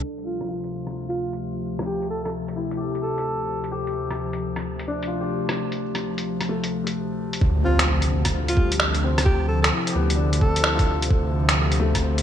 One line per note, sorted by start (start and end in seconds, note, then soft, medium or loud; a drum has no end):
0.03 7.37 D2 medium
0.03 7.37 C3 medium
0.03 7.37 F3 medium
0.18 closed hi-hat soft
0.26 0.50 F4 medium
0.41 cross-stick soft
0.41 closed hi-hat soft
0.49 1.43 F4 medium
0.64 closed hi-hat soft
0.87 cross-stick soft
0.87 closed hi-hat soft
1.09 1.34 F4 medium
1.09 closed hi-hat soft
1.33 closed hi-hat soft
1.79 cross-stick medium
1.79 closed hi-hat soft
1.86 2.08 G4 medium
2.02 closed hi-hat soft
2.10 2.20 A4 medium
2.24 2.30 A4 medium
2.24 cross-stick soft
2.24 closed hi-hat soft
2.48 closed hi-hat soft
2.56 3.51 E4 medium
2.71 closed hi-hat medium
2.77 3.66 G4 medium
2.95 closed hi-hat soft
3.02 3.69 A4 medium
3.18 closed hi-hat medium
3.64 closed hi-hat soft
3.72 4.66 G4 medium
3.87 closed hi-hat soft
4.11 cross-stick soft
4.11 closed hi-hat soft
4.33 closed hi-hat soft
4.56 cross-stick soft
4.56 closed hi-hat soft
4.79 closed hi-hat soft
4.88 5.82 D4 medium
5.03 closed hi-hat medium
5.07 5.97 F4 soft
5.21 6.10 G4 soft
5.49 cross-stick medium
5.49 closed hi-hat medium
5.72 closed hi-hat soft
5.95 cross-stick soft
5.95 closed hi-hat soft
6.18 closed hi-hat soft
6.41 cross-stick soft
6.41 closed hi-hat soft
6.49 7.44 A3 medium
6.64 closed hi-hat soft
6.87 closed hi-hat medium
7.33 closed hi-hat soft
7.41 8.10 D2 loud
7.41 12.22 C3 medium
7.41 12.22 D3 medium
7.41 12.22 F3 medium
7.41 kick loud
7.41 impact medium
7.65 8.59 C4 medium
7.65 7.89 F4 medium
7.79 finger snap loud
7.79 cross-stick soft
7.79 closed hi-hat medium
8.02 closed hi-hat soft
8.10 9.71 D2 medium
8.25 kick medium
8.25 cross-stick soft
8.25 closed hi-hat medium
8.48 8.73 F4 medium
8.48 closed hi-hat soft
8.57 9.51 G3 medium
8.57 kick loud
8.72 closed hi-hat medium
8.80 finger snap loud
8.95 closed hi-hat soft
9.04 9.98 C4 medium
9.18 cross-stick medium
9.18 closed hi-hat medium
9.25 9.47 G4 medium
9.25 kick loud
9.48 9.58 A4 medium
9.62 9.68 A4 medium
9.62 finger snap loud
9.62 cross-stick soft
9.62 closed hi-hat medium
9.73 10.60 E4 medium
9.87 closed hi-hat soft
9.92 11.09 D2 loud
9.92 10.90 B3 medium
9.92 10.81 G4 medium
10.10 closed hi-hat medium
10.16 11.05 D4 medium
10.33 closed hi-hat soft
10.41 11.36 C4 medium
10.41 11.07 A4 medium
10.41 kick loud
10.56 closed hi-hat medium
10.61 11.51 E4 medium
10.61 finger snap loud
10.75 11.64 F4 medium
10.79 kick loud
10.79 closed hi-hat soft
11.02 closed hi-hat medium
11.11 11.79 D2 loud
11.11 kick loud
11.49 finger snap loud
11.49 cross-stick soft
11.49 closed hi-hat medium
11.72 closed hi-hat soft
11.79 12.22 D2 loud
11.79 12.22 A3 medium
11.95 kick medium
11.95 cross-stick soft
11.95 closed hi-hat medium
12.01 12.22 C4 medium
12.18 closed hi-hat soft